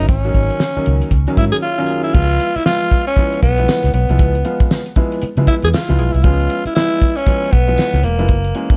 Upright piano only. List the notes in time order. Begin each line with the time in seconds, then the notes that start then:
0.25 D#3 F#3 A#3 C#4
0.76 D#3 F#3 A#3 C#4
1.28 D#3 F#3 A#3 C#4
1.64 C#5
1.78 D#3 F#3 A#3 C#4
1.89 G#4
2.15 F3 G#3 B3 F4
2.66 F3 G#3 B3 F4
3.18 F3 G#3 B3 E4
3.58 F3 G#3 B3 E4
4.10 F3 G#3 B3 E4
4.45 F3 G#3 B3 F4
4.96 F3 G#3 B3 E4
5.37 F3 G#3 B3 E4
5.89 F3 G#3 B3 E4
6.24 F3 G#3 B3 C#4
6.76 F3 G#3 B3 E4
7.27 F3 G#3 B3 E4
7.67 F3 G#3 B3 E4
8.19 F3 G#3 B3 E4
8.55 E3 G#3 A#3 C#4